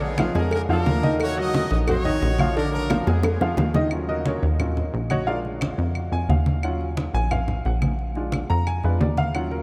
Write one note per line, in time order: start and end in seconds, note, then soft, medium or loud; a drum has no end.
0.00 0.30 A#1 loud
0.00 0.13 D3 medium
0.00 0.35 B3 medium
0.00 0.13 D4 medium
0.00 0.36 G#4 medium
0.00 0.13 D5 medium
0.00 high conga soft
0.18 0.33 F3 medium
0.18 0.33 F4 medium
0.18 0.33 F5 medium
0.18 cowbell medium
0.18 high conga loud
0.18 claves medium
0.35 0.67 F2 loud
0.35 0.63 G#3 medium
0.35 0.52 D4 medium
0.35 0.63 G#4 medium
0.35 0.52 A#4 medium
0.35 0.64 G#5 medium
0.35 cowbell medium
0.35 high conga soft
0.51 0.62 D4 medium
0.51 0.62 A#4 medium
0.51 cowbell loud
0.51 high conga soft
0.51 claves medium
0.69 0.85 F2 medium
0.69 0.97 F3 medium
0.69 1.18 D4 medium
0.69 0.98 F4 medium
0.69 1.17 A#4 loud
0.69 0.98 F5 medium
0.69 high conga soft
0.86 1.65 D#2 loud
0.86 cowbell medium
0.86 high conga medium
1.03 1.31 D#3 medium
1.03 1.31 D#4 medium
1.03 1.31 D#5 medium
1.03 high conga medium
1.20 1.37 F#4 medium
1.20 1.37 C#5 loud
1.20 cowbell loud
1.20 high conga soft
1.20 claves medium
1.36 1.65 F#3 medium
1.36 1.65 F#4 medium
1.36 1.71 F#4 medium
1.36 1.70 D#5 loud
1.36 1.65 F#5 medium
1.36 high conga soft
1.54 cowbell medium
1.54 high conga medium
1.70 2.19 A#1 loud
1.70 1.85 D#4 medium
1.70 1.79 F#4 medium
1.70 1.85 D#5 medium
1.70 1.79 D#5 medium
1.70 1.85 D#6 medium
1.70 cowbell medium
1.70 high conga soft
1.87 2.02 F#3 medium
1.87 2.02 F#4 medium
1.87 2.52 F#4 medium
1.87 2.52 C#5 loud
1.87 2.02 F#5 medium
1.87 cowbell loud
1.87 high conga soft
1.87 low conga medium
1.87 claves medium
2.05 2.33 D#3 medium
2.05 2.33 D#4 loud
2.05 2.33 D#5 loud
2.05 high conga soft
2.05 low conga medium
2.22 3.01 A#1 loud
2.22 cowbell medium
2.22 high conga soft
2.38 2.53 F3 medium
2.38 2.54 F4 medium
2.38 2.54 F5 medium
2.38 high conga medium
2.38 claves medium
2.56 2.84 D3 medium
2.56 2.85 D4 medium
2.56 2.71 D4 medium
2.56 2.71 A#4 medium
2.56 2.84 D5 medium
2.56 cowbell loud
2.56 high conga soft
2.72 3.04 D4 medium
2.72 3.04 A#4 medium
2.72 high conga soft
2.90 3.04 F3 medium
2.90 3.04 F4 medium
2.90 3.05 F5 medium
2.90 cowbell medium
2.90 high bongo medium
2.90 high conga medium
2.90 claves medium
3.07 3.39 F2 medium
3.07 3.35 G#3 medium
3.07 3.75 B3 medium
3.07 3.75 G#4 medium
3.07 3.35 G#4 medium
3.07 3.35 G#5 medium
3.07 cowbell medium
3.07 high bongo loud
3.07 high conga soft
3.23 cowbell loud
3.23 low bongo medium
3.23 high conga soft
3.23 claves medium
3.41 3.57 F2 medium
3.41 3.69 F3 medium
3.41 3.69 F4 medium
3.41 3.69 F5 medium
3.41 low bongo medium
3.41 high conga soft
3.57 4.37 D#2 loud
3.57 cowbell medium
3.57 low bongo medium
3.57 high conga medium
3.74 3.89 D#3 medium
3.74 3.89 D#4 medium
3.74 3.89 D#5 medium
3.74 low bongo medium
3.74 high conga medium
3.91 4.40 F#3 medium
3.91 4.26 C#4 medium
3.91 4.40 F4 medium
3.91 high conga soft
3.91 claves medium
4.09 4.25 D#4 medium
4.09 4.25 F#4 medium
4.09 4.25 A#4 medium
4.09 4.25 D#5 medium
4.09 high conga soft
4.26 4.43 C#4 medium
4.26 4.43 F#4 medium
4.26 4.43 A#4 medium
4.26 4.43 C#5 medium
4.26 high conga medium
4.43 4.90 D#2 loud
4.43 high conga soft
4.60 4.75 F#3 soft
4.60 4.75 C#4 soft
4.60 4.75 F4 medium
4.60 high conga soft
4.60 low conga medium
4.60 claves medium
4.77 high conga soft
4.77 low conga medium
4.94 5.73 A#1 medium
4.94 high conga soft
5.10 5.27 F#4 medium
5.10 5.27 C#5 medium
5.10 5.27 D#5 medium
5.10 5.27 F#5 medium
5.10 high conga medium
5.10 claves medium
5.27 5.76 G#3 medium
5.27 5.76 D4 medium
5.27 5.76 F4 medium
5.27 5.38 A#4 medium
5.27 5.38 D5 medium
5.27 5.37 F5 medium
5.27 high conga soft
5.45 high conga soft
5.61 high conga medium
5.61 claves medium
5.78 6.10 F2 medium
5.78 high conga soft
5.95 high conga soft
5.95 claves medium
6.12 6.28 F2 medium
6.12 6.29 G#5 loud
6.12 high conga soft
6.29 7.08 D#2 loud
6.29 6.61 F5 medium
6.29 high conga medium
6.46 high conga medium
6.63 6.86 F#3 medium
6.63 6.86 C#4 medium
6.63 6.87 F4 medium
6.63 6.80 F#5 medium
6.63 high conga soft
6.63 claves medium
6.81 high conga soft
6.97 high conga medium
7.14 7.61 A#1 loud
7.14 7.31 G#5 loud
7.14 high conga soft
7.31 7.63 F5 medium
7.31 high conga soft
7.31 low conga medium
7.31 claves medium
7.48 high conga soft
7.48 low conga medium
7.65 8.45 A#1 loud
7.65 7.76 F#5 medium
7.65 high conga soft
7.82 high conga medium
7.82 claves medium
7.99 high conga soft
8.15 8.39 G#3 medium
8.15 8.39 D4 medium
8.15 8.39 F4 medium
8.15 high conga soft
8.32 high conga medium
8.32 claves medium
8.50 8.82 F2 loud
8.50 8.66 A#5 loud
8.50 high conga soft
8.67 8.84 G#5 medium
8.67 high conga soft
8.67 claves medium
8.84 9.00 F2 medium
8.84 8.99 G#3 medium
8.84 9.00 D4 soft
8.84 9.00 F4 medium
8.84 9.01 B4 medium
8.84 high conga soft
9.01 9.62 D#2 loud
9.01 9.17 D5 medium
9.01 high conga medium
9.17 9.35 F5 medium
9.17 high conga medium
9.34 9.62 F#3 medium
9.34 9.62 C#4 medium
9.34 9.62 F4 medium
9.34 9.52 F#5 loud
9.34 high conga soft
9.34 claves medium
9.51 9.62 A#4 medium
9.51 high conga soft